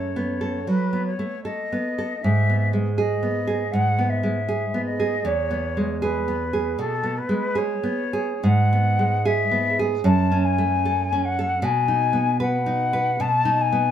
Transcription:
Already playing: F#2 A4 C#5
0.16 B3
0.41 A4
0.67 F#3 B4
0.93 B3
1.06 C#5
1.19 A3
1.44 A4 D#5
1.72 B3
1.98 A4
2.23 G#2 E5
2.50 B3
2.73 G#3
2.97 G#4 D#5
3.23 B3
3.47 G#4
3.72 G#2 F#5
3.99 B3
4.09 E5
4.23 G#3
4.49 G#4
4.74 B3
4.85 D#5
5.00 G#4
5.25 E2 C#5
5.51 B3
5.77 G#3
6.01 G#4 B4
6.28 B3
6.53 G#4
6.79 B2 A4
7.03 B3
7.18 B4
7.29 G#3
7.55 G#4 C#5
7.84 B3
8.13 G#4
8.43 G#2 F#5
8.73 B3
8.99 G#3
9.25 G#4 E5
9.51 B3
9.79 G#4
10.04 F#2 A5
10.32 C#4
10.45 G#5
10.58 A3
10.85 A4
11.12 C#4
11.25 F#5
11.39 A4
11.62 B2 G#5
11.88 D#4
12.13 B3
12.40 B4 F#5
12.66 D#4
12.93 B4
13.20 B2 A5
13.45 D#4
13.61 G#5
13.72 B3

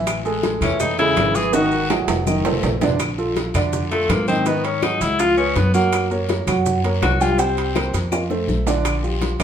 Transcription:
Already playing: A1 E3 E4 E5
0.07 high bongo, high timbale, long guiro, claves, maracas
0.25 G#3 G#4 A4, high bongo, maracas
0.43 G#3 G#4 A4, high bongo, high conga, high timbale, short guiro, maracas
0.61 E2 A2 E3 C#4 E4 E5, high conga, low conga, high timbale, short guiro, claves, maracas
0.80 A2 D#4, high bongo, high conga, low conga, long guiro, maracas
0.98 C#3 G#3 E4 G#4 A4, high bongo, high conga, high timbale, maracas
1.16 G#1 E3 E4 E5, high bongo, low bongo, high conga, high timbale, low timbale, short guiro, claves, maracas
1.35 E3 G#4, high bongo, high conga, short guiro, maracas
1.53 D#3 D#4 F#4 D#5, high bongo, high timbale, long guiro, maracas
1.71 high bongo, high conga, maracas
1.90 F#3 F#4 G#4, high bongo, high conga, low timbale, short guiro, claves, maracas
2.07 F1, high bongo, low timbale, short guiro, maracas
2.27 D#3 D#4 D#5, high bongo, high conga, long guiro, claves, maracas
2.39 low conga
2.45 A3 A4 C5, high bongo, low timbale, maracas
2.51 low conga
2.63 A#1, low bongo, low conga, low timbale, short guiro, maracas
2.81 D3 D4 D5, low bongo, low timbale, short guiro, maracas
2.88 low conga
3.00 high bongo, high conga, high timbale, long guiro, claves, maracas
3.18 F3 F4 A4, high bongo, high conga, maracas
3.36 high bongo, high conga, high timbale, short guiro, maracas
3.54 F2 D3 D4 D5, high conga, low conga, high timbale, short guiro, claves, maracas
3.73 high bongo, high conga, low conga, long guiro, maracas
3.91 F3 A3 F4 A4, high bongo, high conga, high timbale, maracas
4.09 G#2 A#3, high bongo, low bongo, high conga, high timbale, low timbale, short guiro, claves, maracas
4.28 D#3 C4 D#4 D#5, high bongo, high conga, short guiro, maracas
4.46 D#3 B3 D#4 D#5, high bongo, high conga, high timbale, long guiro, maracas
4.64 C#4, high bongo, high conga, high timbale, maracas
4.82 F#3 D#4 F#4 G#4, high bongo, high conga, high timbale, short guiro, claves, maracas
5.01 C#2 E4, high bongo, high conga, high timbale, short guiro, maracas
5.19 F3 F4 F5, high bongo, high timbale, long guiro, claves, maracas
5.37 G#3 C#4 G#4 B4, high bongo, high conga, maracas
5.56 F#2 B3, high bongo, low bongo, high conga, high timbale, short guiro, maracas
5.74 F#3 A#3 F#4 F#5, short guiro, maracas
5.92 high bongo, high conga, high timbale, long guiro, claves, maracas
6.11 A#3 A#4 C#5, high bongo, high conga, maracas
6.29 high bongo, high conga, high timbale, short guiro, maracas
6.47 F#2 F#3 F#4 F#5, high conga, low conga, high timbale, short guiro, claves, maracas
6.66 high bongo, high conga, low conga, long guiro, maracas
6.84 A#3 A#4 C#5, high bongo, high conga, high timbale, maracas
7.02 C2 F#4, high bongo, low bongo, high conga, high timbale, low timbale, short guiro, claves, maracas
7.21 G3 F4 G4 G5, high bongo, high conga, short guiro, maracas
7.39 G3 C4 G4 G5, high bongo, high timbale, long guiro, maracas
7.57 high bongo, high conga, high timbale, maracas
7.75 A#3 A#4 C5, high bongo, high conga, high timbale, short guiro, claves, maracas
7.93 F2, high bongo, high conga, high timbale, short guiro, maracas
8.12 F3 F4 F5, high bongo, high conga, high timbale, long guiro, claves, maracas
8.30 A3 A4 C5, low bongo, high conga, maracas
8.48 A#1, low bongo, high conga, short guiro, maracas
8.67 D3 D4 D5, low bongo, low timbale, short guiro, maracas
8.85 high bongo, high timbale, long guiro, claves, maracas
9.03 F3 F4 G4, high bongo, high conga, maracas
9.21 high bongo, high conga, high timbale, short guiro, maracas
9.40 G1 D3 D4 D5, high conga, low conga, high timbale, short guiro, claves, maracas

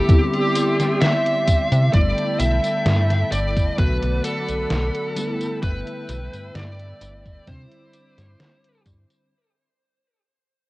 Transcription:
Already playing: G4 E5
0.08 D3 G3 B3 C4 E4 G4 D5 C6, kick, closed hi-hat, tambourine
0.33 closed hi-hat
0.55 closed hi-hat, tambourine
0.80 snare, closed hi-hat, tambourine
1.01 E5, snare, closed hi-hat, tambourine
1.26 closed hi-hat
1.47 kick, closed hi-hat, tambourine
1.72 C3, closed hi-hat, tambourine
1.93 G1 D3 G3 A3 B3 E4 A4 D5 G5 B5, kick, closed hi-hat, tambourine
2.18 closed hi-hat
2.40 B1 E5, closed hi-hat, tambourine
2.64 closed hi-hat, tambourine
2.86 G2, snare, closed hi-hat, tambourine
3.10 snare, closed hi-hat
3.32 G1 D5, closed hi-hat, tambourine
3.57 kick, closed hi-hat, tambourine
3.77 B1 D3 F#3 A3 B3 F#4 A4 B4 D5 F#5, kick, closed hi-hat, tambourine
4.02 B1, closed hi-hat
4.24 A4, closed hi-hat, tambourine
4.48 B1, closed hi-hat, tambourine
4.70 B1, snare, closed hi-hat, tambourine
4.95 closed hi-hat
5.15 D3 G3 A3 B3 E4 E5 G5, closed hi-hat, tambourine
5.41 closed hi-hat, tambourine
5.63 G1 B4, kick, closed hi-hat, tambourine
5.87 closed hi-hat
6.09 B1, closed hi-hat, tambourine
6.33 G2, closed hi-hat, tambourine
6.55 G2 D5, snare, closed hi-hat, tambourine
6.79 closed hi-hat
7.01 G1, closed hi-hat, tambourine
7.25 kick, closed hi-hat, tambourine
7.46 C3 D3 G3 C4 D4 E4 C5 B5 D6, kick, closed hi-hat, tambourine
7.71 closed hi-hat
7.93 closed hi-hat, tambourine
8.18 G2, snare, closed hi-hat, tambourine
8.40 snare, closed hi-hat, tambourine
8.64 closed hi-hat
8.86 G2, kick, closed hi-hat, tambourine
9.10 closed hi-hat, tambourine

